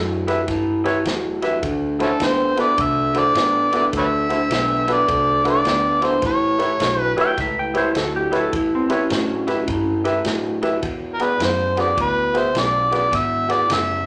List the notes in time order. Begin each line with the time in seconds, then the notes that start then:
Already playing: F#2 A2 F#3
0.27 A2 F#3 E4 G4 B4 E5, snare, ride
0.47 G2 A2 E3, kick, snare, ride
0.84 A2 E3 E4 G4 B4 C#5, snare, ride
1.05 E2 A2 F#3, snare, ride
1.42 A2 F#3 E4 G4 B4 E5, snare, ride
1.62 D2 D3 A3, kick, ride
1.99 D3 A3 C#4 E4 F#4 A4 C5, snare, ride
2.20 E2 D3 B3 C5, snare, ride
2.56 D3 B3 E4 F#4 A4 B4, snare, ride
2.60 D5
2.77 C2 D3 A3, kick, ride
2.81 E5
3.13 D3 A3 E4 F#4 A4 C5, snare, ride
3.19 D5
3.34 A1 D3 B3, snare, ride
3.71 D3 B3 E4 F#4 A4 B4, snare, ride
3.76 D5
3.92 D2 D3 A3, kick, ride
3.98 B4 C#5 E5
4.29 D3 A3 E4 F#4 A4 C5, snare, ride
4.50 B1 D3 B3, snare, ride
4.87 D3 B3 E4 F#4 A4 B4, snare, ride
4.93 D5
5.07 C2 D3 A3, kick, ride
5.44 D3 A3 E4 F#4 A4 B4, snare, ride
5.50 D5
5.65 D2 D3 B3, snare, ride
6.01 D3 B3 E4 F#4 A4 C5, snare, ride
6.06 C5
6.22 A1 A2 E3, kick, snare, ride
6.26 C#5
6.58 A2 E3 E4 G4 B4 C#5, snare, ride
6.79 B1 A2 F#3, snare, ride
7.02 B4
7.16 A2 F#3 E4 G4 B4 C#5, muted fingered electric bass stroke, snare, ride
7.21 G5
7.37 C#2 A2 E3 E5, kick, snare, ride
7.59 G5
7.74 A2 E3 E4 G4 B4 C5 C#5, snare, ride
7.94 D2 A2 F#3 A4, snare, ride
8.16 G4
8.31 A2 F#3 E4 G4 B4 C#5, snare, ride
8.36 A4
8.52 E2 A2 E3, kick, ride
8.56 E4
8.75 C4
8.89 A2 E3 E4 G4 B4 C#5, snare, ride
8.95 C#4
9.10 A2 F#3, snare, ride
9.47 A2 F#3 E4 G4 B4 E5, snare, ride
9.67 G2 A2 E3, kick, ride
10.04 A2 E3 E4 G4 B4 E5, snare, ride
10.25 A2 F#3, snare, ride
10.62 A2 F#3 E4 G4 B4 E5, snare, ride
10.82 E2 B2, kick, ride
11.13 A#4
11.19 E2 B2 F#4 G#4 B4 D5, snare, ride
11.39 E2 F#2 C#3, snare, ride
11.43 C5
11.76 E2 C#3 F#4 G#4 B4 D5, snare, ride
11.80 D5
11.96 D2 E2 B2, kick, ride
12.01 B4
12.33 E2 B2 F#4 G#4 B4 C5 E5, snare, ride
12.54 B1 E2 C#3, snare, ride
12.59 D5
12.90 E2 C#3 F#4 G#4 B4 D5, snare, ride
13.11 G#1 E2 B2, kick, snare, ride
13.16 E5
13.48 E2 B2 F#4 G#4 B4 D5, snare, ride
13.52 D5
13.68 F#1 E2 C#3, snare, ride
13.73 E5